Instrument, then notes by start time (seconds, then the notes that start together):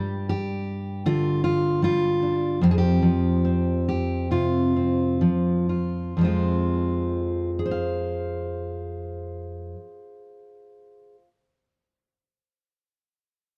steel-string acoustic guitar
Already playing: G2 G3 G4
0.29 G4
1.06 D3 F4
1.44 F4
1.82 G3 F4
2.22 D4
2.61 F2 F3 C4 G4
2.71 G#4
2.78 G4
3.02 F3
3.45 C4
3.89 G4
4.31 C3 F4
4.76 C4
5.21 F3
5.69 F4
6.17 F2 F3
6.21 G#3 C4 F4
7.59 G#4
7.66 C5
7.71 F5